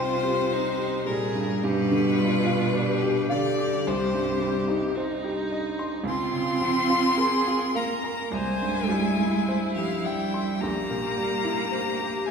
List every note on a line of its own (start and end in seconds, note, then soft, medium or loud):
0.00 1.58 C2 medium
0.00 1.10 C3 loud
0.00 0.54 F4 medium
0.00 0.23 G4 medium
0.00 0.53 C5 medium
0.00 1.08 C5 loud
0.00 1.65 G5 medium
0.00 1.65 C6 medium
0.23 0.68 G4 medium
0.53 1.07 D#4 medium
0.53 0.96 C5 medium
0.78 1.23 G4 medium
1.06 1.64 A#2 medium
1.06 1.51 G3 medium
1.06 1.65 G#4 medium
1.06 1.65 A#4 loud
1.35 1.62 G2 medium
1.63 3.83 G2 medium
1.63 3.32 B2 loud
1.63 2.20 G4 medium
1.63 3.30 B4 loud
1.91 2.36 D3 medium
2.18 2.63 G3 medium
2.18 2.77 F4 medium
2.46 2.91 F4 medium
2.75 3.31 G4 medium
2.75 3.19 D5 medium
3.03 3.48 G4 medium
3.29 3.87 D3 loud
3.29 4.98 G4 medium
3.29 3.89 D5 loud
3.29 3.75 F5 medium
3.59 3.87 D6 medium
3.87 6.02 C2 medium
3.87 4.95 C3 medium
3.87 4.97 C5 loud
4.14 4.58 G2 medium
4.42 4.85 G3 medium
4.68 5.12 D#4 medium
4.97 6.05 D#4 medium
4.97 5.40 C5 medium
5.24 5.67 G4 medium
5.52 5.95 D#5 medium
5.79 6.06 C6 medium
6.04 8.27 C#2 medium
6.04 7.77 C4 loud
6.04 7.19 F4 medium
6.08 7.78 C6 loud
6.33 6.77 C#3 medium
6.61 7.06 F3 medium
6.90 7.34 F4 medium
7.17 7.76 G#4 medium
7.17 7.63 A#4 medium
7.48 7.92 F4 medium
7.75 8.33 A#3 medium
7.75 8.32 A#4 medium
7.75 8.21 F5 medium
7.75 8.36 A#5 medium
8.04 8.32 A#5 medium
8.32 10.55 C2 medium
8.32 9.74 G#3 loud
8.32 8.92 C5 medium
8.32 9.74 G#5 loud
8.62 9.08 G2 medium
8.90 9.36 G3 medium
8.90 10.62 E4 medium
9.20 9.64 E4 medium
9.48 9.93 C5 medium
9.74 10.06 F3 medium
9.74 10.21 G4 medium
9.74 10.07 F5 loud
10.04 10.62 G3 medium
10.04 10.49 E5 medium
10.04 10.63 G5 loud
10.34 10.61 C6 medium
10.60 12.31 A#1 medium
10.60 12.29 A#3 loud
10.60 11.71 G4 medium
10.60 12.27 A#5 loud
10.90 11.33 A#2 medium
11.18 11.61 G3 medium
11.45 11.88 E4 medium
11.71 12.30 G4 medium
11.71 12.16 C5 soft
12.00 12.31 G4 medium
12.26 12.31 G#3 medium
12.26 12.31 E5 medium
12.26 12.31 G#5 medium